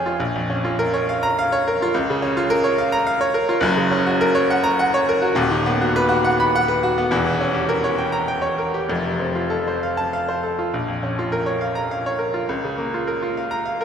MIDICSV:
0, 0, Header, 1, 2, 480
1, 0, Start_track
1, 0, Tempo, 576923
1, 166, Time_signature, 3, 2, 24, 8
1, 6403, Tempo, 608519
1, 8803, Tempo, 582524
1, 11364, End_track
2, 0, Start_track
2, 0, Title_t, "Grand piano"
2, 0, Program_c, 0, 0
2, 0, Control_c, 0, 64, 127
2, 0, Note_on_c, 0, 29, 94
2, 0, Note_on_c, 0, 41, 97
2, 0, Note_on_c, 0, 53, 72
2, 0, Note_on_c, 0, 61, 79
2, 0, Note_on_c, 0, 65, 75
2, 0, Note_on_c, 0, 68, 75
2, 0, Note_on_c, 0, 73, 87
2, 0, Note_on_c, 0, 77, 87
2, 0, Note_on_c, 0, 80, 105
2, 50, Note_off_c, 0, 65, 0
2, 50, Note_on_c, 0, 65, 75
2, 123, Note_off_c, 0, 68, 0
2, 131, Note_off_c, 0, 29, 0
2, 135, Note_off_c, 0, 41, 0
2, 164, Note_on_c, 0, 34, 93
2, 168, Note_off_c, 0, 65, 0
2, 180, Control_c, 0, 64, 0
2, 181, Note_off_c, 0, 77, 0
2, 181, Note_off_c, 0, 80, 0
2, 182, Note_off_c, 0, 73, 0
2, 186, Note_off_c, 0, 53, 0
2, 186, Note_off_c, 0, 61, 0
2, 298, Control_c, 0, 64, 127
2, 298, Note_on_c, 0, 41, 77
2, 414, Note_on_c, 0, 61, 73
2, 487, Note_off_c, 0, 41, 0
2, 536, Note_on_c, 0, 65, 78
2, 605, Note_off_c, 0, 61, 0
2, 657, Note_on_c, 0, 70, 100
2, 726, Note_off_c, 0, 65, 0
2, 780, Note_on_c, 0, 73, 86
2, 847, Note_off_c, 0, 70, 0
2, 907, Note_on_c, 0, 77, 90
2, 968, Note_off_c, 0, 73, 0
2, 1022, Note_on_c, 0, 82, 114
2, 1092, Note_off_c, 0, 77, 0
2, 1153, Note_on_c, 0, 77, 103
2, 1209, Note_off_c, 0, 82, 0
2, 1268, Note_on_c, 0, 73, 102
2, 1334, Note_off_c, 0, 77, 0
2, 1394, Note_on_c, 0, 70, 89
2, 1450, Note_off_c, 0, 73, 0
2, 1517, Note_on_c, 0, 65, 92
2, 1573, Note_off_c, 0, 70, 0
2, 1575, Note_off_c, 0, 34, 0
2, 1617, Note_on_c, 0, 37, 101
2, 1621, Control_c, 0, 64, 0
2, 1622, Note_off_c, 0, 65, 0
2, 1737, Control_c, 0, 64, 127
2, 1747, Note_on_c, 0, 49, 89
2, 1849, Note_on_c, 0, 61, 90
2, 1929, Note_off_c, 0, 49, 0
2, 1971, Note_on_c, 0, 65, 94
2, 2040, Note_off_c, 0, 61, 0
2, 2081, Note_on_c, 0, 70, 111
2, 2160, Note_off_c, 0, 65, 0
2, 2196, Note_on_c, 0, 73, 96
2, 2273, Note_off_c, 0, 70, 0
2, 2315, Note_on_c, 0, 77, 99
2, 2390, Note_off_c, 0, 73, 0
2, 2432, Note_on_c, 0, 82, 127
2, 2508, Note_off_c, 0, 77, 0
2, 2551, Note_on_c, 0, 77, 104
2, 2625, Note_off_c, 0, 82, 0
2, 2668, Note_on_c, 0, 73, 106
2, 2744, Note_off_c, 0, 77, 0
2, 2781, Note_on_c, 0, 70, 94
2, 2862, Note_off_c, 0, 73, 0
2, 2903, Note_on_c, 0, 65, 93
2, 2979, Note_off_c, 0, 70, 0
2, 3000, Note_on_c, 0, 30, 121
2, 3005, Note_off_c, 0, 37, 0
2, 3017, Note_on_c, 0, 42, 118
2, 3028, Note_off_c, 0, 65, 0
2, 3048, Control_c, 0, 64, 0
2, 3137, Note_on_c, 0, 49, 91
2, 3194, Control_c, 0, 64, 127
2, 3256, Note_on_c, 0, 61, 88
2, 3336, Note_off_c, 0, 49, 0
2, 3381, Note_on_c, 0, 66, 87
2, 3455, Note_off_c, 0, 61, 0
2, 3502, Note_on_c, 0, 70, 107
2, 3576, Note_off_c, 0, 66, 0
2, 3618, Note_on_c, 0, 73, 107
2, 3696, Note_off_c, 0, 70, 0
2, 3747, Note_on_c, 0, 78, 101
2, 3814, Note_off_c, 0, 73, 0
2, 3857, Note_on_c, 0, 82, 127
2, 3939, Note_off_c, 0, 78, 0
2, 3988, Note_on_c, 0, 78, 102
2, 4054, Note_off_c, 0, 82, 0
2, 4110, Note_on_c, 0, 73, 107
2, 4180, Note_off_c, 0, 78, 0
2, 4233, Note_on_c, 0, 70, 96
2, 4301, Note_off_c, 0, 73, 0
2, 4341, Note_on_c, 0, 66, 89
2, 4420, Note_off_c, 0, 30, 0
2, 4424, Note_off_c, 0, 70, 0
2, 4428, Note_off_c, 0, 42, 0
2, 4453, Note_on_c, 0, 27, 118
2, 4458, Note_on_c, 0, 39, 119
2, 4466, Note_off_c, 0, 66, 0
2, 4484, Control_c, 0, 64, 0
2, 4585, Note_on_c, 0, 51, 93
2, 4623, Control_c, 0, 64, 127
2, 4711, Note_on_c, 0, 59, 96
2, 4782, Note_off_c, 0, 51, 0
2, 4836, Note_on_c, 0, 66, 87
2, 4904, Note_off_c, 0, 59, 0
2, 4958, Note_on_c, 0, 71, 116
2, 5026, Note_off_c, 0, 66, 0
2, 5065, Note_on_c, 0, 66, 101
2, 5147, Note_off_c, 0, 71, 0
2, 5196, Note_on_c, 0, 78, 98
2, 5261, Note_off_c, 0, 66, 0
2, 5324, Note_on_c, 0, 83, 121
2, 5387, Note_off_c, 0, 78, 0
2, 5454, Note_on_c, 0, 78, 109
2, 5511, Note_off_c, 0, 83, 0
2, 5560, Note_on_c, 0, 71, 96
2, 5636, Note_off_c, 0, 78, 0
2, 5684, Note_on_c, 0, 66, 93
2, 5750, Note_off_c, 0, 71, 0
2, 5807, Note_on_c, 0, 59, 91
2, 5872, Note_off_c, 0, 66, 0
2, 5874, Note_off_c, 0, 27, 0
2, 5876, Note_off_c, 0, 39, 0
2, 5916, Note_on_c, 0, 28, 98
2, 5919, Note_on_c, 0, 40, 115
2, 5921, Note_off_c, 0, 59, 0
2, 5931, Control_c, 0, 64, 0
2, 6045, Note_on_c, 0, 52, 78
2, 6069, Control_c, 0, 64, 127
2, 6162, Note_on_c, 0, 61, 87
2, 6235, Note_off_c, 0, 52, 0
2, 6274, Note_on_c, 0, 67, 73
2, 6354, Note_off_c, 0, 61, 0
2, 6396, Note_on_c, 0, 70, 94
2, 6467, Note_off_c, 0, 67, 0
2, 6517, Note_on_c, 0, 73, 87
2, 6582, Note_off_c, 0, 70, 0
2, 6630, Note_on_c, 0, 79, 81
2, 6701, Note_off_c, 0, 73, 0
2, 6741, Note_on_c, 0, 82, 97
2, 6817, Note_off_c, 0, 79, 0
2, 6864, Note_on_c, 0, 79, 85
2, 6933, Note_off_c, 0, 82, 0
2, 6972, Note_on_c, 0, 73, 83
2, 7056, Note_off_c, 0, 79, 0
2, 7103, Note_on_c, 0, 70, 66
2, 7171, Note_off_c, 0, 73, 0
2, 7227, Note_on_c, 0, 67, 72
2, 7299, Note_off_c, 0, 70, 0
2, 7318, Note_off_c, 0, 28, 0
2, 7319, Note_off_c, 0, 40, 0
2, 7338, Note_on_c, 0, 29, 78
2, 7349, Note_off_c, 0, 67, 0
2, 7349, Note_on_c, 0, 41, 92
2, 7363, Control_c, 0, 64, 0
2, 7474, Note_on_c, 0, 48, 65
2, 7493, Control_c, 0, 64, 127
2, 7586, Note_on_c, 0, 60, 60
2, 7672, Note_off_c, 0, 48, 0
2, 7710, Note_on_c, 0, 65, 64
2, 7789, Note_off_c, 0, 60, 0
2, 7825, Note_on_c, 0, 69, 81
2, 7911, Note_off_c, 0, 65, 0
2, 7964, Note_on_c, 0, 72, 68
2, 8027, Note_off_c, 0, 69, 0
2, 8086, Note_on_c, 0, 77, 71
2, 8156, Note_off_c, 0, 72, 0
2, 8200, Note_on_c, 0, 81, 93
2, 8276, Note_off_c, 0, 77, 0
2, 8325, Note_on_c, 0, 77, 78
2, 8392, Note_off_c, 0, 81, 0
2, 8446, Note_on_c, 0, 72, 70
2, 8515, Note_off_c, 0, 77, 0
2, 8561, Note_on_c, 0, 69, 64
2, 8636, Note_off_c, 0, 72, 0
2, 8683, Note_on_c, 0, 65, 64
2, 8753, Note_off_c, 0, 69, 0
2, 8763, Note_off_c, 0, 29, 0
2, 8769, Note_off_c, 0, 41, 0
2, 8801, Note_off_c, 0, 65, 0
2, 8802, Note_on_c, 0, 34, 84
2, 8815, Control_c, 0, 64, 0
2, 8921, Note_on_c, 0, 41, 64
2, 8946, Control_c, 0, 64, 127
2, 9043, Note_on_c, 0, 61, 67
2, 9115, Note_off_c, 0, 41, 0
2, 9173, Note_on_c, 0, 65, 69
2, 9236, Note_off_c, 0, 61, 0
2, 9284, Note_on_c, 0, 70, 86
2, 9360, Note_off_c, 0, 65, 0
2, 9399, Note_on_c, 0, 73, 74
2, 9474, Note_off_c, 0, 70, 0
2, 9521, Note_on_c, 0, 77, 76
2, 9592, Note_off_c, 0, 73, 0
2, 9639, Note_on_c, 0, 82, 93
2, 9712, Note_off_c, 0, 77, 0
2, 9770, Note_on_c, 0, 77, 81
2, 9830, Note_off_c, 0, 82, 0
2, 9893, Note_on_c, 0, 73, 78
2, 9956, Note_off_c, 0, 77, 0
2, 9997, Note_on_c, 0, 70, 67
2, 10078, Note_off_c, 0, 73, 0
2, 10122, Note_on_c, 0, 65, 68
2, 10190, Note_off_c, 0, 70, 0
2, 10207, Note_off_c, 0, 34, 0
2, 10241, Note_off_c, 0, 65, 0
2, 10246, Note_on_c, 0, 37, 84
2, 10252, Control_c, 0, 64, 0
2, 10373, Control_c, 0, 64, 127
2, 10374, Note_on_c, 0, 49, 68
2, 10485, Note_on_c, 0, 58, 69
2, 10559, Note_off_c, 0, 49, 0
2, 10618, Note_on_c, 0, 65, 64
2, 10675, Note_off_c, 0, 58, 0
2, 10728, Note_on_c, 0, 70, 81
2, 10801, Note_off_c, 0, 65, 0
2, 10851, Note_on_c, 0, 65, 67
2, 10916, Note_off_c, 0, 70, 0
2, 10973, Note_on_c, 0, 77, 69
2, 11037, Note_off_c, 0, 65, 0
2, 11086, Note_on_c, 0, 82, 96
2, 11159, Note_off_c, 0, 77, 0
2, 11206, Note_on_c, 0, 77, 80
2, 11275, Note_off_c, 0, 82, 0
2, 11332, Note_on_c, 0, 70, 82
2, 11364, Note_off_c, 0, 37, 0
2, 11364, Note_off_c, 0, 70, 0
2, 11364, Note_off_c, 0, 77, 0
2, 11364, End_track
0, 0, End_of_file